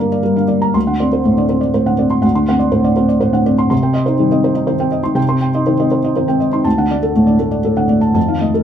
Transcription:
0.00 0.71 G2 soft
0.00 0.37 D3 soft
0.00 0.23 G3 soft
0.00 0.49 A#3 soft
0.00 0.23 A#4 soft
0.00 0.12 D5 soft
0.00 0.36 F5 soft
0.00 0.62 A#5 soft
0.12 0.32 D5 soft
0.23 0.44 G3 soft
0.23 0.44 A#4 soft
0.36 0.57 D3 soft
0.36 0.57 F5 soft
0.48 0.69 A#3 soft
0.48 0.69 D5 soft
0.62 0.74 A#5 soft
0.74 2.19 D2 soft
0.74 0.94 C6 soft
0.87 1.07 D3 soft
0.87 1.07 F#5 soft
1.00 1.20 C4 soft
1.00 1.20 D5 soft
1.13 1.32 C5 soft
1.25 1.45 A2 soft
1.25 1.45 A3 soft
1.38 1.57 D3 soft
1.38 1.57 D5 soft
1.49 1.69 C4 soft
1.49 1.69 C5 soft
1.61 1.81 D5 soft
1.74 1.94 A2 soft
1.74 1.94 C5 soft
1.86 2.06 D3 soft
1.86 2.06 F#5 soft
1.98 2.18 C4 soft
1.98 2.18 D5 soft
2.10 2.31 C6 soft
2.22 3.67 D2 medium
2.22 2.43 F#5 soft
2.35 2.55 D3 soft
2.35 2.56 C6 soft
2.49 2.68 C4 soft
2.49 2.68 F#5 soft
2.59 2.80 D5 soft
2.72 2.92 A2 soft
2.72 2.92 C5 soft
2.84 3.04 D3 soft
2.84 3.05 D5 soft
2.96 3.17 C4 soft
2.96 3.17 C5 soft
3.09 3.29 D5 soft
3.20 3.41 A2 soft
3.20 3.41 C5 soft
3.33 3.53 D3 soft
3.33 3.54 F#5 medium
3.46 3.66 C4 soft
3.46 3.66 D5 soft
3.58 3.68 C6 soft
3.70 5.12 C3 medium
3.70 3.90 C6 soft
3.83 4.02 C4 soft
3.83 4.02 G5 soft
3.94 4.14 D#5 medium
4.06 4.26 D#4 soft
4.06 4.26 C5 medium
4.19 4.39 D#3 soft
4.19 4.39 G3 soft
4.31 4.51 C4 soft
4.31 4.51 D#5 soft
4.44 4.64 C5 soft
4.55 4.75 D#4 soft
4.55 4.75 D#5 soft
4.67 4.87 D#3 soft
4.67 4.87 C5 medium
4.80 4.99 C4 soft
4.80 4.99 G5 soft
4.92 5.11 D#5 soft
5.03 5.23 D#4 soft
5.03 5.23 C6 soft
5.15 6.60 C3 medium
5.15 5.35 G5 medium
5.29 5.48 C4 soft
5.29 5.48 C6 soft
5.41 5.61 G5 soft
5.54 5.74 D#4 soft
5.54 5.74 D#5 medium
5.67 5.86 D#3 soft
5.67 5.86 C5 soft
5.79 5.99 C4 soft
5.79 5.99 D#5 soft
5.91 6.11 C5 soft
6.04 6.24 D#4 soft
6.04 6.24 D#5 soft
6.16 6.36 D#3 soft
6.16 6.36 C5 soft
6.28 6.48 C4 soft
6.28 6.48 G5 soft
6.40 6.60 D#5 soft
6.52 6.65 D#4 soft
6.52 6.65 C6 soft
6.64 8.12 D2 medium
6.64 6.84 A5 soft
6.78 6.98 D3 soft
6.78 6.97 F#5 soft
6.91 7.10 A3 soft
6.91 7.10 D5 soft
7.03 7.22 A4 soft
7.15 7.35 A2 soft
7.15 7.35 A3 soft
7.27 7.47 D3 soft
7.27 7.47 D5 soft
7.39 7.59 A3 soft
7.39 7.59 A4 soft
7.51 7.72 D5 soft
7.64 7.85 A2 soft
7.64 7.85 A4 soft
7.77 7.98 D3 soft
7.77 7.97 F#5 soft
7.89 8.10 A3 soft
7.89 8.10 D5 soft
8.01 8.13 A5 soft
8.14 8.63 F2 soft
8.14 8.36 A5 soft
8.28 8.50 D#3 soft
8.28 8.49 F5 soft
8.41 8.62 A3 soft
8.41 8.62 D#5 soft
8.54 8.63 A4 soft

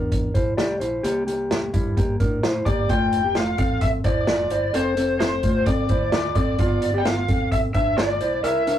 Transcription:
0.00 0.28 E2 medium
0.00 0.32 D4 soft
0.00 0.32 A#4 medium
0.12 kick medium
0.12 closed hi-hat medium
0.34 0.55 A#1 medium
0.34 0.58 E4 medium
0.34 0.57 C5 medium
0.34 kick medium
0.34 closed hi-hat medium
0.57 0.78 C2 medium
0.57 0.81 G4 medium
0.57 0.80 D5 medium
0.57 snare medium
0.57 closed hi-hat medium
0.80 1.01 A#1 medium
0.80 1.04 E4 soft
0.80 1.04 C5 medium
0.80 closed hi-hat medium
1.03 1.70 C2 medium
1.03 1.26 A#3 medium
1.03 1.25 G4 medium
1.03 closed hi-hat medium
1.27 1.71 A#3 soft
1.27 1.71 G4 medium
1.27 closed hi-hat medium
1.51 snare medium
1.51 closed hi-hat medium
1.74 2.13 G2 medium
1.74 1.97 G3 soft
1.74 1.97 E4 medium
1.74 kick medium
1.74 closed hi-hat medium
1.97 2.20 A#3 medium
1.97 2.20 G4 medium
1.97 kick medium
1.97 closed hi-hat medium
2.20 2.60 A2 medium
2.20 2.44 D4 medium
2.20 2.43 A#4 medium
2.20 kick medium
2.20 closed hi-hat medium
2.43 2.67 E4 medium
2.43 2.66 C5 medium
2.43 snare loud
2.43 closed hi-hat medium
2.66 2.86 G1 medium
2.66 2.90 A#3 medium
2.66 2.89 G4 medium
2.66 2.88 D5 medium
2.66 kick medium
2.66 closed hi-hat medium
2.89 3.23 A3 medium
2.89 3.22 F4 medium
2.89 3.37 G5 medium
2.89 kick loud
2.89 closed hi-hat medium
3.13 closed hi-hat medium
3.24 3.36 A#3 soft
3.24 3.36 G4 medium
3.35 3.59 A3 soft
3.35 3.59 F4 medium
3.35 3.58 F5 medium
3.35 snare medium
3.35 closed hi-hat medium
3.58 3.98 A1 medium
3.58 4.02 C4 soft
3.58 4.02 A4 medium
3.58 3.82 F5 medium
3.58 kick medium
3.58 closed hi-hat medium
3.81 3.88 E5 medium
3.81 kick medium
3.81 closed hi-hat medium
4.04 4.24 E1 medium
4.04 4.27 E4 medium
4.04 4.28 C5 medium
4.04 4.77 D5 medium
4.04 kick medium
4.04 closed hi-hat medium
4.27 4.48 F1 medium
4.27 4.51 F4 medium
4.27 4.51 D5 medium
4.27 snare loud
4.27 closed hi-hat medium
4.50 4.71 G1 medium
4.50 4.75 E4 soft
4.50 4.74 C5 medium
4.50 closed hi-hat medium
4.74 5.40 F1 medium
4.74 4.97 C4 medium
4.74 4.96 A4 loud
4.74 5.19 C5 medium
4.74 closed hi-hat medium
4.97 5.41 C4 soft
4.97 5.41 A4 medium
4.97 closed hi-hat medium
5.20 5.63 C5 medium
5.20 snare medium
5.20 closed hi-hat medium
5.43 5.83 C2 medium
5.43 5.67 A3 soft
5.43 5.67 F4 medium
5.43 kick medium
5.43 closed hi-hat medium
5.66 5.90 C4 medium
5.66 5.90 A4 medium
5.66 6.12 D5 medium
5.66 kick medium
5.66 closed hi-hat medium
5.89 6.29 D2 medium
5.89 6.12 E4 medium
5.89 6.13 C5 medium
5.89 kick medium
5.89 closed hi-hat medium
6.12 6.36 F4 medium
6.12 6.36 D5 medium
6.12 6.35 D5 medium
6.12 snare loud
6.12 closed hi-hat medium
6.35 6.55 F1 medium
6.35 6.60 C4 medium
6.35 6.59 A4 medium
6.35 7.00 D5 medium
6.35 kick medium
6.35 closed hi-hat medium
6.59 7.25 G1 medium
6.59 6.92 B3 medium
6.59 6.92 F4 loud
6.59 kick loud
6.59 closed hi-hat medium
6.82 closed hi-hat medium
6.94 7.05 B3 medium
6.94 7.05 G4 medium
6.98 7.05 G5 medium
7.05 7.28 B3 soft
7.05 7.29 F4 medium
7.05 7.52 F5 medium
7.05 snare loud
7.05 closed hi-hat medium
7.28 7.68 B1 medium
7.28 7.72 C4 soft
7.28 7.72 A4 medium
7.28 kick medium
7.28 closed hi-hat medium
7.52 7.58 E5 medium
7.52 kick medium
7.52 closed hi-hat medium
7.74 7.94 F1 medium
7.74 7.98 D4 medium
7.74 7.98 B4 medium
7.74 7.98 E5 medium
7.74 kick medium
7.74 closed hi-hat medium
7.97 8.17 G1 medium
7.97 8.21 F4 medium
7.97 8.20 D5 medium
7.97 8.41 D5 medium
7.97 snare loud
7.97 closed hi-hat medium
8.21 8.40 B1 medium
8.21 8.43 E4 medium
8.21 8.43 C5 medium
8.21 closed hi-hat medium
8.44 8.79 C2 medium
8.44 8.67 E4 medium
8.44 8.65 A#4 loud
8.44 8.79 E5 medium
8.44 closed hi-hat medium
8.67 8.79 D4 medium
8.67 8.79 A#4 medium
8.67 closed hi-hat medium

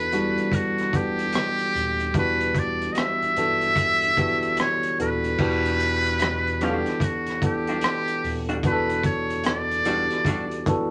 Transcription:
0.00 0.34 E1 loud
0.00 0.13 E3 medium
0.00 0.13 B3 medium
0.00 0.13 D4 medium
0.00 0.14 F#4 medium
0.00 3.38 A4 medium
0.00 0.57 B4 loud
0.12 0.89 E3 medium
0.12 0.90 G3 medium
0.12 0.89 B3 medium
0.12 0.89 D4 medium
0.12 0.90 F#4 medium
0.12 closed hi-hat medium
0.38 closed hi-hat soft
0.52 0.98 F#4 medium
0.52 kick medium
0.52 closed hi-hat medium
0.78 cross-stick soft
0.78 closed hi-hat soft
0.93 2.09 E3 medium
0.93 2.09 B3 medium
0.93 2.09 D4 medium
0.93 2.09 G4 medium
0.93 2.16 G4 medium
0.93 2.09 F#5 medium
0.93 kick medium
0.93 closed hi-hat medium
1.19 closed hi-hat soft
1.32 cross-stick loud
1.32 closed hi-hat medium
1.59 closed hi-hat soft
1.75 2.15 D#1 medium
1.75 closed hi-hat medium
2.00 closed hi-hat soft
2.14 2.87 E1 medium
2.14 3.30 E3 medium
2.14 3.30 B3 medium
2.14 3.30 D4 medium
2.14 3.31 F#4 medium
2.14 3.31 G4 medium
2.14 2.60 B4 medium
2.14 kick medium
2.14 closed hi-hat medium
2.41 closed hi-hat soft
2.55 kick medium
2.55 closed hi-hat medium
2.59 2.94 D5 medium
2.82 closed hi-hat soft
2.93 3.00 D#5 medium
2.93 closed hi-hat medium
2.98 4.59 E5 loud
2.98 cross-stick loud
3.22 muted fretless electric bass stroke soft
3.22 closed hi-hat soft
3.36 4.39 G1 medium
3.36 4.13 E3 medium
3.36 4.13 B3 medium
3.36 4.14 D4 medium
3.36 4.14 F#4 medium
3.36 4.14 A4 medium
3.36 closed hi-hat medium
3.61 closed hi-hat soft
3.76 kick medium
3.76 closed hi-hat medium
4.02 closed hi-hat soft
4.17 4.94 E3 medium
4.17 4.95 B3 medium
4.17 4.95 D4 medium
4.17 4.95 F#4 medium
4.17 4.95 G4 medium
4.17 kick medium
4.17 closed hi-hat medium
4.43 closed hi-hat soft
4.57 4.97 C#5 medium
4.57 cross-stick medium
4.57 closed hi-hat medium
4.83 closed hi-hat soft
4.99 5.35 D#1 medium
4.99 5.37 E3 medium
4.99 5.37 B3 medium
4.99 5.37 D4 medium
4.99 5.38 F#4 medium
4.99 5.38 A4 medium
4.99 6.66 B4 medium
4.99 closed hi-hat medium
5.24 closed hi-hat soft
5.38 6.83 E1 medium
5.38 6.54 E3 medium
5.38 6.55 B3 medium
5.38 6.55 D4 medium
5.38 6.55 F#4 medium
5.38 6.55 G4 medium
5.38 kick medium
5.38 crash medium
5.65 closed hi-hat soft
5.80 closed hi-hat medium
6.06 closed hi-hat soft
6.19 muted hollow-body jazz guitar stroke soft
6.19 cross-stick loud
6.19 closed hi-hat medium
6.47 closed hi-hat soft
6.61 7.38 E3 medium
6.61 6.86 G3 medium
6.61 7.38 B3 medium
6.61 7.38 D4 medium
6.61 6.87 D4 medium
6.61 6.88 F#4 medium
6.61 6.70 G4 medium
6.61 7.05 G4 medium
6.61 7.38 F#5 medium
6.61 closed hi-hat medium
6.69 7.42 A4 medium
6.86 cross-stick soft
6.86 closed hi-hat soft
7.00 7.43 F#4 medium
7.00 kick medium
7.00 closed hi-hat medium
7.26 cross-stick soft
7.26 closed hi-hat soft
7.42 8.57 E3 medium
7.42 8.58 B3 medium
7.42 8.58 D4 medium
7.42 8.49 G4 medium
7.42 8.58 A4 medium
7.42 8.58 F#5 medium
7.42 kick medium
7.42 closed hi-hat medium
7.67 7.77 G3 soft
7.67 7.76 D4 soft
7.67 7.76 F#4 medium
7.67 closed hi-hat soft
7.81 cross-stick loud
7.81 closed hi-hat medium
8.07 closed hi-hat soft
8.24 8.64 D#1 medium
8.24 open hi-hat soft
8.49 8.58 G3 soft
8.49 8.57 D4 medium
8.49 8.57 F#4 medium
8.49 closed hi-hat soft
8.63 10.07 E1 medium
8.63 9.79 E3 medium
8.63 9.79 B3 medium
8.63 9.80 D4 medium
8.63 9.80 F#4 medium
8.63 8.73 G#4 medium
8.63 9.02 B4 medium
8.63 kick medium
8.63 closed hi-hat medium
8.72 9.83 A4 medium
8.90 closed hi-hat soft
9.03 9.42 C#5 medium
9.03 kick medium
9.03 closed hi-hat medium
9.30 closed hi-hat soft
9.44 10.80 D5 loud
9.44 muted hollow-body jazz guitar stroke soft
9.44 cross-stick loud
9.44 closed hi-hat medium
9.71 closed hi-hat soft
9.85 10.62 E3 medium
9.85 10.03 G3 medium
9.85 10.62 B3 medium
9.85 10.62 D4 medium
9.85 10.03 D4 medium
9.85 10.62 F#4 medium
9.85 10.04 F#4 medium
9.85 10.63 G4 medium
9.85 closed hi-hat medium
10.10 cross-stick soft
10.10 closed hi-hat soft
10.25 10.44 G3 medium
10.25 10.44 D4 medium
10.25 kick medium
10.25 closed hi-hat medium
10.29 10.45 F#4 medium
10.51 closed hi-hat soft
10.66 10.91 E3 medium
10.66 10.91 B3 medium
10.66 10.91 D4 medium
10.66 10.91 F#4 medium
10.66 10.91 A4 medium
10.66 kick medium
10.66 closed hi-hat medium

